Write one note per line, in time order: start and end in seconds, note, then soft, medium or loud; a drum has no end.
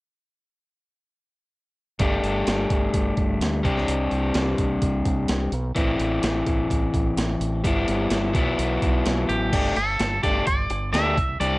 1.99 2.20 G1 medium
1.99 3.62 G3 medium
1.99 3.63 A3 medium
1.99 3.63 D4 medium
1.99 3.64 G4 medium
1.99 kick medium
1.99 closed hi-hat medium
2.23 2.43 G1 medium
2.23 closed hi-hat medium
2.47 2.67 G1 medium
2.47 snare loud
2.47 closed hi-hat medium
2.70 2.90 G1 medium
2.70 kick medium
2.70 closed hi-hat medium
2.94 3.14 G1 medium
2.94 kick medium
2.94 closed hi-hat medium
3.17 3.38 G1 medium
3.17 kick medium
3.17 closed hi-hat medium
3.40 3.61 D2 medium
3.40 snare medium
3.40 closed hi-hat medium
3.63 3.85 C2 medium
3.63 5.51 G3 medium
3.63 5.51 C4 medium
3.63 5.52 D4 medium
3.63 5.52 G4 medium
3.63 kick medium
3.63 closed hi-hat soft
3.77 snare soft
3.88 4.08 C2 medium
3.88 closed hi-hat medium
4.11 4.32 C2 medium
4.11 closed hi-hat medium
4.34 4.55 C2 medium
4.34 snare loud
4.34 closed hi-hat medium
4.58 kick medium
4.58 closed hi-hat soft
4.82 5.02 C2 medium
4.82 kick medium
4.82 closed hi-hat medium
5.05 5.26 C2 medium
5.05 kick medium
5.05 closed hi-hat medium
5.28 5.50 C2 medium
5.28 snare loud
5.28 closed hi-hat medium
5.52 5.73 B1 medium
5.52 closed hi-hat soft
5.75 5.97 A1 medium
5.75 7.62 E3 medium
5.75 7.63 C4 medium
5.75 7.64 E4 medium
5.75 kick loud
5.75 closed hi-hat medium
6.00 6.20 A1 medium
6.00 closed hi-hat medium
6.23 6.44 A1 medium
6.23 snare loud
6.23 closed hi-hat medium
6.46 6.67 A1 medium
6.46 kick medium
6.46 closed hi-hat medium
6.70 6.91 A1 medium
6.70 kick medium
6.70 closed hi-hat medium
6.94 7.14 A1 medium
6.94 kick medium
6.94 closed hi-hat medium
7.17 7.37 A1 medium
7.17 snare loud
7.17 closed hi-hat medium
7.40 7.61 A1 medium
7.40 closed hi-hat soft
7.64 7.85 G1 medium
7.64 8.33 G3 medium
7.64 8.34 B3 medium
7.64 8.34 E4 medium
7.64 kick medium
7.64 closed hi-hat medium
7.88 8.09 G1 medium
7.88 closed hi-hat medium
8.11 8.32 G1 medium
8.11 snare medium
8.11 closed hi-hat medium
8.33 8.56 B1 medium
8.33 9.50 F#3 medium
8.33 9.51 B3 loud
8.33 9.52 E4 medium
8.33 kick loud
8.33 closed hi-hat medium
8.59 8.79 B1 medium
8.59 closed hi-hat medium
8.82 9.03 B1 medium
8.82 kick medium
8.82 closed hi-hat soft
9.05 9.26 B1 medium
9.05 snare loud
9.05 closed hi-hat medium
9.29 9.50 A1 medium
9.29 9.73 G4 medium
9.29 closed hi-hat soft
9.53 9.73 G1 medium
9.53 9.76 A3 medium
9.53 9.76 D4 medium
9.53 9.76 G4 medium
9.53 kick loud
9.53 closed hi-hat medium
9.53 crash medium
9.76 9.97 G1 medium
9.76 10.23 A4 medium
9.76 muted overdriven electric guitar stroke soft
9.76 closed hi-hat medium
9.99 10.21 G1 medium
9.99 muted overdriven electric guitar stroke soft
9.99 snare medium
9.99 closed hi-hat medium
10.23 10.44 G1 medium
10.23 10.45 A3 medium
10.23 10.46 D4 medium
10.23 10.46 G4 medium
10.23 10.46 D5 medium
10.23 kick medium
10.23 closed hi-hat medium
10.47 10.67 G1 medium
10.47 10.92 D5 medium
10.47 muted overdriven electric guitar stroke soft
10.47 kick medium
10.47 closed hi-hat medium
10.70 10.91 G1 medium
10.70 muted overdriven electric guitar stroke soft
10.70 closed hi-hat medium
10.93 11.14 D2 medium
10.93 11.17 A3 medium
10.93 11.17 D4 medium
10.93 11.16 G4 medium
10.93 11.40 E5 loud
10.93 snare loud
10.93 closed hi-hat medium
11.17 11.38 C2 medium
11.17 muted overdriven electric guitar stroke soft
11.17 kick medium
11.17 closed hi-hat medium
11.40 11.59 C2 medium
11.40 11.59 G3 medium
11.40 11.59 C4 medium
11.40 11.59 D4 medium
11.40 11.59 G4 medium
11.40 11.59 D5 medium
11.40 closed hi-hat medium